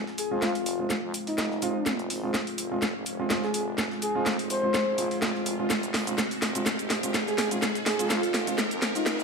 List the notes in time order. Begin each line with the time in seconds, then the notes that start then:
Already playing: G#3 C4 F4, riser
0.07 snare
0.18 G#4, open hi-hat, shaker
0.31 F2 G#3 C4 F4
0.42 F4, snare, shaker
0.55 F1, closed hi-hat, open hi-hat
0.66 open hi-hat, shaker
0.79 G#3 C4 F4
0.90 snare, shaker
1.03 F2
1.14 open hi-hat, shaker
1.27 D#4, snare, open hi-hat
1.38 F1, snare, shaker
1.51 snare
1.62 F1 G#3 C4 F4, open hi-hat, shaker
1.86 F1, snare, shaker
1.99 closed hi-hat
2.10 G#1, open hi-hat
2.23 G#3 C4 F4
2.34 snare, shaker
2.47 open hi-hat
2.58 F1, open hi-hat, shaker
2.71 G#3 C4 F4
2.82 F1, snare, shaker
2.95 G#1
3.06 F1, open hi-hat, shaker
3.19 G#3 C4 F4
3.30 G#3 C4 F4, snare, shaker
3.43 G#4, snare
3.54 F1 G#4, open hi-hat, shaker
3.78 snare, shaker
3.91 snare
4.02 G#4, open hi-hat, shaker
4.15 F2 G#3 C4 F4
4.26 snare, shaker
4.39 F1, closed hi-hat, open hi-hat
4.50 C5, open hi-hat, shaker
4.63 G#3 C4 F4
4.74 snare, shaker
4.87 G#1
4.98 G#3 C4 F4, open hi-hat, shaker
5.11 F1, snare, open hi-hat
5.22 snare, shaker
5.35 F1, snare
5.46 open hi-hat, shaker
5.59 G#3 C4 F4
5.70 F1 D#4, snare, shaker
5.83 closed hi-hat, shaker
5.94 G#1, snare, open hi-hat
6.07 G#3 C4 F4, closed hi-hat, shaker
6.18 snare, shaker
6.31 open hi-hat, shaker
6.42 F1, snare, open hi-hat, shaker
6.55 G#3 C4 F4, closed hi-hat, shaker
6.66 F1, snare, shaker
6.79 G#1, closed hi-hat, shaker
6.90 F1, snare, open hi-hat, shaker
7.03 G#3 C4 F4, closed hi-hat, shaker
7.14 snare, shaker
7.27 G#4, snare, shaker
7.38 F1 G#4, snare, open hi-hat, shaker
7.51 G#3 C4 F4, closed hi-hat, shaker
7.62 snare, shaker
7.75 snare, closed hi-hat, shaker
7.86 G#4, snare, open hi-hat, shaker
7.99 F2 G#3 C4 F4, closed hi-hat, shaker
8.10 F4, snare, shaker
8.23 F1, closed hi-hat, open hi-hat, shaker
8.34 snare, open hi-hat, shaker
8.47 G#3 C4 F4, closed hi-hat, shaker
8.58 snare, shaker
8.71 F2, closed hi-hat, shaker
8.82 snare, open hi-hat, shaker
8.95 G#3 C4 D#4 F4, snare, open hi-hat, shaker
9.06 snare, shaker
9.19 snare, shaker